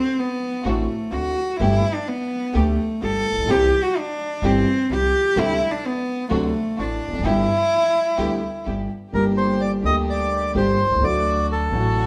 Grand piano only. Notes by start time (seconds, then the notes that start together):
0.65 A1 A2 D3 A3 C4 F#4
1.12 D2 D3
1.60 G1 G2 D3 A3 B3 G4
2.54 D2 D3 A3 B3 G4
3.02 G1 G2
3.31 A1
3.40 A#1
3.45 B1
3.50 C2 C3 E3 G3 C4 G4
4.43 G1 G2 E3 G3 C4 G4
4.91 C2 C3
5.37 D2 C3 D3 G3 A3 D4
6.30 D2 C3 D3 F#3 A3 D4
6.78 A1 A2
7.08 E2
7.13 F2
7.20 F#2
7.26 G1 G2 D3 G3 B3 E4
8.18 D2 D3 G3 B3 E4
8.67 G1 G2
9.13 G1 G2 D3 G3 A#3 G4
9.83 D2 D3 G3 A#3 G4
10.55 G1 G2 D3 G3 A#3 G4
10.85 B1
10.91 C2
10.97 C#2 D3
11.01 D2 F#3 A3 F#4
11.70 A1 A2 D3 F#3 A3
11.75 F#4